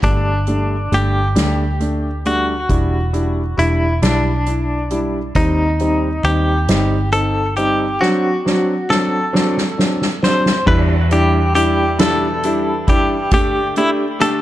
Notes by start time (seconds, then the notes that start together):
0.03 G1 G3 A3 D4, kick, closed hi-hat
0.47 G3 A3 D4, closed hi-hat
0.92 G1 G3 A3 D4 G4, closed hi-hat
1.35 D2 G3 A3 D4, snare, closed hi-hat
1.80 A3 D4, closed hi-hat
2.25 G3 A3 D4 F#4, closed hi-hat
2.69 E1 G3 D4 E4, kick, closed hi-hat
3.13 G3 D4 E4, closed hi-hat
3.57 E1 G3 D4 E4, closed hi-hat
4.02 B1 G3 D4 E4, snare, closed hi-hat
4.46 D4 E4, closed hi-hat
4.90 G3 D4 E4, closed hi-hat
5.35 D#2 G3 C4 D#4, kick, closed hi-hat
5.79 G3 C4 D#4, closed hi-hat
6.24 D#2 G3 C4 D#4 G4, closed hi-hat
6.68 G1 G3 C4 D#4, snare, closed hi-hat
7.12 C4 D#4 A4, closed hi-hat
7.57 G3 C4 D#4 G4, closed hi-hat
8.01 F#3 C4 D4 F#4, snare
8.45 F#3 C4 D4, snare
8.89 F#3 C4 D4 A4, snare
9.33 F#3 C4 D4, snare
9.57 snare
9.78 F#3 C4 D4, snare
10.02 snare
10.23 F#3 C4 D4 C5, snare
10.46 snare
10.66 E2 B2 E3 G3 D4 E4 B4, kick, crash
11.10 E3 G3 D4 E4 G4, closed hi-hat
11.54 E3 G3 D4 E4 G4, closed hi-hat
11.99 E2 B2 E3 G3 D4 E4 A4, snare, closed hi-hat
12.43 E3 G3 D4 E4, closed hi-hat
12.87 E3 G3 D4 E4 G4, kick, closed hi-hat
13.31 D2 D3 A3 D4 G4, kick, closed hi-hat
13.75 A3 D4 E4 G4, closed hi-hat
14.19 D3 A3 D4 G4 A4, snare, closed hi-hat